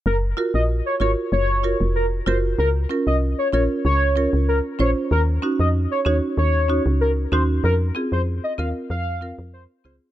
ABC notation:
X:1
M:4/4
L:1/16
Q:1/4=95
K:Gblyd
V:1 name="Soft synth lead"
B z2 e z d d z d3 z B z c z | B z2 e z d d z d3 z B z d z | B z2 e z d d z d3 z B z c z | B z2 c z e f z f3 z c z c z |]
V:2 name="Marimba"
z2 [FGB]2 z2 [FGB]2 z2 [FGB]2 z2 [FGB]2 | z2 [DFB]2 z2 [DFB]2 z2 [DFB]2 z2 [DFc]2 | z2 [DEG]2 z2 [DEG]2 z2 [DEG]2 z2 [DEG]2 | z2 [CFA]2 z2 [CFB]2 z2 [CFB]2 z2 [CFA]2 |]
V:3 name="FM bass" clef=bass
G,,,2 z B,,,2 z A,,, z G,,,3 F,,,3 G,,,2 | D,,2 z C,,2 z B,,, z D,,3 D,,2 z B,,, z | E,,2 z F,,2 z E,, z E,,3 D,,3 E,,2 | F,,2 z F,,2 z E,, z F,,3 F,,2 z D,, z |]